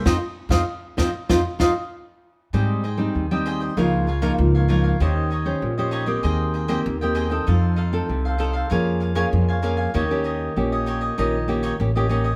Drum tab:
SD |o--o--o-o-o-----|----------------|----------------|----------------|
BD |o--o--o-o-o-----|----------------|----------------|----------------|

SD |----------------|
BD |----------------|